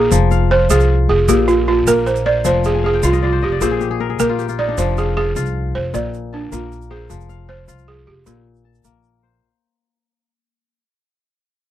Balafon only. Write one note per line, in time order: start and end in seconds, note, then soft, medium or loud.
0.00 0.29 G#4 medium
0.51 0.71 C5 loud
0.70 1.08 G#4 medium
1.09 1.29 G#4 medium
1.29 1.49 G4 medium
1.48 1.57 F4 medium
1.68 1.86 F4 medium
1.87 2.07 A#4 loud
2.07 2.25 C5 medium
2.26 2.44 D5 loud
2.46 2.66 C5 loud
2.66 2.85 G#4 loud
2.86 3.03 G#4 loud
3.05 3.23 F4 medium
3.24 3.43 F4 medium
3.44 3.61 G4 medium
3.62 4.22 G#4 medium
4.20 4.56 A#4 loud
4.59 4.79 D5 medium
4.78 4.98 C5 loud
4.98 5.07 G#4 medium
5.17 5.71 G#4 loud
5.75 5.93 C5 medium
5.94 6.34 D5 loud
6.34 6.53 D4 medium
6.53 6.92 F4 medium
6.91 7.51 G#4 medium
7.49 7.89 C5 medium
7.88 8.08 G#4 medium
8.07 8.27 G4 medium
8.26 9.00 F4 medium